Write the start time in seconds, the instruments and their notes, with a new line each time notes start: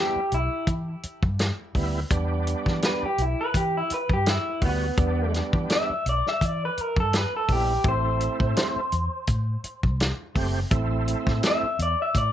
Already playing: tonewheel organ G3 B3 E4, clean electric guitar G4
0.16 muted fingered electric bass stroke
0.32 fingered electric bass B1, clean electric guitar E4, closed hi-hat
0.67 fingered electric bass E3, kick, closed hi-hat
1.03 muted fingered electric bass stroke, closed hi-hat
1.23 fingered electric bass G2, kick
1.39 snare, closed hi-hat
1.75 fingered electric bass D2, tonewheel organ G3 B3 E4, kick, open hi-hat
2.10 fingered electric bass E2, tonewheel organ G3 B3 D4, kick, closed hi-hat
2.47 closed hi-hat
2.66 fingered electric bass E3, kick, snare
2.82 clean electric guitar B4, snare, closed hi-hat
3.03 clean electric guitar G4, muted fingered electric bass stroke
3.18 fingered electric bass B1, clean electric guitar E4, closed hi-hat
3.41 clean electric guitar B4
3.54 fingered electric bass E3, clean electric guitar G4, kick, closed hi-hat
3.77 clean electric guitar E4
3.90 clean electric guitar B4, muted fingered electric bass stroke, closed hi-hat
4.09 fingered electric bass G2, clean electric guitar G4, kick
4.26 clean electric guitar E4, snare, closed hi-hat
4.61 fingered electric bass D2, tonewheel organ G3 B3 F#4, kick, open hi-hat
4.65 clean electric guitar B3
4.97 fingered electric bass E2, tonewheel organ G3 B3 D4, kick, closed hi-hat
5.34 snare, closed hi-hat
5.53 fingered electric bass E3, kick
5.70 clean electric guitar E5, snare, closed hi-hat
5.90 muted fingered electric bass stroke
6.06 fingered electric bass B1, clean electric guitar D5, closed hi-hat
6.27 clean electric guitar E5, snare
6.41 fingered electric bass E3, clean electric guitar D5, kick, closed hi-hat
6.65 clean electric guitar B4
6.77 clean electric guitar A#4, muted fingered electric bass stroke, closed hi-hat
6.96 fingered electric bass G2, clean electric guitar A4, kick
7.13 snare, closed hi-hat
7.17 clean electric guitar B4
7.37 clean electric guitar A4
7.48 fingered electric bass A#1, tonewheel organ G3 B3 E4, kick, open hi-hat
7.52 clean electric guitar G4
7.84 fingered electric bass A1, tonewheel organ A3 C4 E4, kick, closed hi-hat
7.88 clean electric guitar C5
8.21 closed hi-hat
8.40 fingered electric bass A2, kick
8.56 snare, closed hi-hat
8.76 muted fingered electric bass stroke
8.92 fingered electric bass E2, closed hi-hat
9.27 fingered electric bass A2, kick, closed hi-hat
9.64 muted fingered electric bass stroke, closed hi-hat
9.83 fingered electric bass C2, kick
10.00 snare, closed hi-hat
10.35 fingered electric bass F#1, tonewheel organ A3 C4 G4, kick, open hi-hat
10.71 fingered electric bass A1, tonewheel organ A3 C4 E4, kick, closed hi-hat
11.08 closed hi-hat
11.27 fingered electric bass A2, kick, snare
11.43 snare, closed hi-hat
11.47 clean electric guitar E5
11.63 muted fingered electric bass stroke
11.79 fingered electric bass E2, clean electric guitar D5, closed hi-hat
12.02 clean electric guitar E5
12.15 fingered electric bass A2, clean electric guitar D5, kick, closed hi-hat